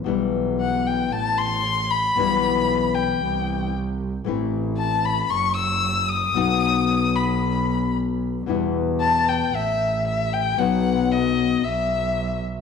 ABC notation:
X:1
M:4/4
L:1/8
Q:1/4=114
K:Em
V:1 name="Violin"
z2 f g a c'2 b- | b3 g3 z2 | z2 a b ^c' e'2 ^d'- | ^d'3 b3 z2 |
z2 a g e2 e g | f2 ^d2 e3 z |]
V:2 name="Nylon-string guitar"
[B,,E,G,B,E]4 z4 | [B,,E,G,B,E]4 z4 | [E,A,CE]4 z4 | [B,,F,B,^DF]8 |
[B,,E,G,B,E]4 z4 | [B,,F,B,^DF]4 z4 |]
V:3 name="Double bass" clef=bass
B,,,4 A,,,4 | B,,,4 C,,4 | A,,,4 F,,,4 | B,,,8 |
E,,4 A,,,4 | B,,,4 B,,,4 |]